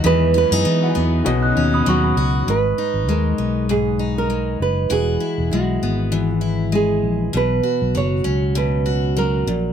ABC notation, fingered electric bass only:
X:1
M:4/4
L:1/16
Q:"Swing 16ths" 1/4=99
K:B
V:1 name="Fingered electric bass" clef=bass
E,,3 F,, E,2 E,,2 B,,,2 D,,2 D,,2 C,,2 | G,,,2 z G,,, D,,2 B,,,8 F,,,2 | E,,,2 z E,,, B,,,2 G,,,8 A,,,2 | B,,,2 z B,,, F,,,2 C,,8 A,,,2 |]